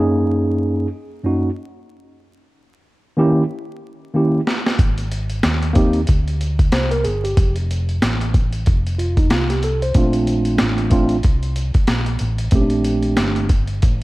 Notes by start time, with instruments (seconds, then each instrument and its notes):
Already playing: tine electric piano F#2 A#3 C#4 D#4 G#4
1.23 tine electric piano F#2 A#3 C#4 D#4 F#4
3.17 tine electric piano D#3 A#3 C#4 E4 G4
4.14 tine electric piano D#3 A#3 C#4 E4 G4
4.47 snare
4.66 snare
4.79 fingered electric bass G#1, kick, closed hi-hat
4.98 closed hi-hat
5.12 closed hi-hat
5.30 closed hi-hat
5.43 fingered electric bass D#2, snare, closed hi-hat
5.63 closed hi-hat
5.73 tine electric piano A#3 C4 D#4 G4, kick, closed hi-hat
5.93 closed hi-hat
6.07 fingered electric bass D2, kick, closed hi-hat
6.28 closed hi-hat
6.41 closed hi-hat
6.59 kick, closed hi-hat
6.72 fingered electric bass C2, tine electric piano C5, snare, closed hi-hat
6.91 tine electric piano A#4, closed hi-hat
7.04 fingered electric bass G1, tine electric piano G#4, closed hi-hat
7.24 tine electric piano G4, closed hi-hat
7.37 fingered electric bass F1, kick, closed hi-hat
7.56 closed hi-hat
7.71 closed hi-hat
7.89 closed hi-hat
8.02 fingered electric bass A1, snare, closed hi-hat
8.21 closed hi-hat
8.34 kick, closed hi-hat
8.53 closed hi-hat
8.66 fingered electric bass F1, kick, closed hi-hat
8.87 closed hi-hat
8.98 tine electric piano F4, closed hi-hat
9.17 tine electric piano D#4, kick, closed hi-hat
9.30 fingered electric bass C2, tine electric piano F4, snare, closed hi-hat
9.50 tine electric piano G4, snare, closed hi-hat
9.63 tine electric piano A4, closed hi-hat
9.82 tine electric piano C5, closed hi-hat
9.94 fingered electric bass A#1, tine electric piano A3 C4 D4 F4, kick, closed hi-hat
10.13 closed hi-hat
10.27 closed hi-hat
10.45 closed hi-hat
10.58 fingered electric bass A1, snare, closed hi-hat
10.78 closed hi-hat
10.90 tine electric piano A3 C4 D4 F4, kick, closed hi-hat
11.09 closed hi-hat
11.23 fingered electric bass C2, kick, closed hi-hat
11.43 closed hi-hat
11.56 closed hi-hat
11.74 kick, closed hi-hat
11.87 fingered electric bass A#1, snare, closed hi-hat
12.06 closed hi-hat
12.19 fingered electric bass A1, closed hi-hat
12.38 closed hi-hat
12.51 fingered electric bass A#1, tine electric piano A3 C4 C#4, kick, closed hi-hat
12.55 tine electric piano G4
12.61 tine electric piano D4
12.70 closed hi-hat
12.85 closed hi-hat
13.03 closed hi-hat
13.17 fingered electric bass G1, snare, closed hi-hat
13.36 closed hi-hat
13.49 kick, closed hi-hat
13.67 closed hi-hat
13.82 fingered electric bass A1, kick, closed hi-hat